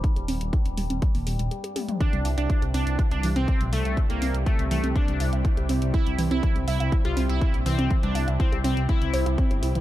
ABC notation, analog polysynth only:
X:1
M:4/4
L:1/16
Q:1/4=122
K:Cdor
V:1 name="Analog polysynth"
z16 | D2 z D2 z D2 z D z C2 z A,2 | z B,2 z A, z A, z D3 z4 z | =E2 z E2 z E2 z F z E2 z C2 |
z D2 z C z C z =E3 z4 z |]